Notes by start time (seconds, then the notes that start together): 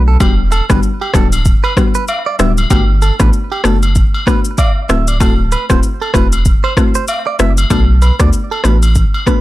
Already playing: B1 D3 A3 B3 D4 F#4
0.08 A4
0.20 E1 G3 B3 D4 F#4 G4, kick, high agogo, shaker
0.52 A4, high agogo, shaker
0.70 G1 G3 B3 D4 F#4 B4, kick, cross-stick, shaker
0.83 shaker
1.01 G4, high agogo
1.14 D1 G3 B3 D4 F#4 A4, kick, cross-stick, shaker
1.32 high agogo, shaker
1.45 kick, shaker
1.64 B4, high agogo
1.77 G3 B3 D4 F#4, kick, cross-stick, shaker
1.95 B4, shaker
2.08 high agogo, low woodblock, shaker
2.26 D5
2.39 D1 G3 B3 D4 F#4 E5, cross-stick, shaker
2.57 high agogo, shaker
2.70 G1 A3 B3 D4 F#4 G4, kick, high agogo, shaker
3.02 A4, high agogo, shaker
3.20 A1 A3 B3 D4 F#4 B4, kick, cross-stick, shaker
3.33 shaker
3.52 G4, high agogo
3.64 F#1 A3 B3 D4 F#4 A4, cross-stick, shaker
3.83 high agogo, shaker
3.95 kick, shaker
4.14 high agogo
4.27 A3 B3 D4 F#4 B4, kick, cross-stick, shaker
4.45 shaker
4.58 D5, kick, high agogo, low woodblock, shaker
4.89 D1 A3 C4 E4 F#4 E5, cross-stick, shaker
5.08 D5, high agogo, shaker
5.20 A3 C4 E4 F#4 A4, kick, high agogo, shaker
5.52 B4, high agogo, shaker
5.70 D1 A3 C4 E4 F#4 C5, kick, cross-stick, shaker
5.83 shaker
6.02 A4, high agogo
6.14 E1 A3 C4 E4 F#4 B4, kick, cross-stick, shaker
6.32 high agogo, shaker
6.45 kick, shaker
6.64 C5, high agogo
6.77 A3 C4 E4 F#4, kick, cross-stick, shaker
6.95 C5, shaker
7.08 high agogo, low woodblock, shaker
7.27 D5
7.39 F#1 A3 C4 E4 F#4 E5, cross-stick, shaker
7.57 high agogo, shaker
7.70 B1 A3 B3 D4 F#4 A4, kick, high agogo, shaker
8.02 B4, high agogo, shaker
8.20 D2 A3 B3 D4 F#4 D5, kick, cross-stick, shaker
8.33 shaker
8.51 A4, high agogo
8.64 A1 A3 B3 D4 F#4 B4, cross-stick, shaker
8.82 high agogo, shaker
8.95 kick, shaker
9.14 high agogo
9.26 A3 B3 D4 F#4 B4, kick, cross-stick, shaker